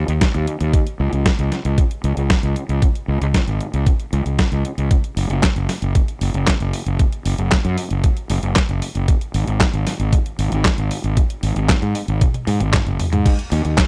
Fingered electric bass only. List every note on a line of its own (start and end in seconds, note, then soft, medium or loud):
0.08 0.19 D#2 medium
0.35 0.45 D#2 medium
0.61 0.71 D#2 medium
1.00 1.11 C#2 medium
1.13 1.24 C#2 medium
1.39 1.50 C#2 medium
1.65 1.76 C#2 medium
2.04 2.15 C#2 medium
2.17 2.28 C#2 medium
2.43 2.54 C#2 medium
2.69 2.80 C#2 medium
3.08 3.19 C#2 medium
3.21 3.32 C#2 medium
3.47 3.58 G#1 medium
3.74 3.85 C#2 medium
4.13 4.24 C#2 medium
4.26 4.37 C#2 medium
4.52 4.63 C#2 medium
4.78 4.89 C#2 medium
5.17 5.28 F#1 medium
5.30 5.41 F#1 medium
5.56 5.67 F#1 medium
5.82 5.93 F#1 medium
6.21 6.32 F#1 medium
6.34 6.45 F#1 medium
6.60 6.71 F#1 medium
6.86 6.97 F#1 medium
7.26 7.37 F#1 medium
7.39 7.50 F#1 medium
7.65 7.76 F#2 medium
7.91 8.02 F#1 medium
8.30 8.41 F#1 medium
8.43 8.54 F#1 medium
8.69 8.80 F#1 medium
8.95 9.06 F#1 medium
9.34 9.45 G#1 medium
9.47 9.58 G#1 medium
9.73 9.84 G#1 medium
9.99 10.10 G#1 medium
10.39 10.50 G#1 medium
10.52 10.63 G#1 medium
10.78 10.89 G#1 medium
11.04 11.15 G#1 medium
11.43 11.54 G#1 medium
11.56 11.67 G#1 medium
11.82 11.93 G#2 medium
12.08 12.19 G#1 medium
12.47 12.58 G#2 medium
12.60 12.71 G#1 medium
12.86 12.97 F#1 medium
13.13 13.24 G#2 medium
13.52 13.63 D#2 loud
13.65 13.76 D#2 medium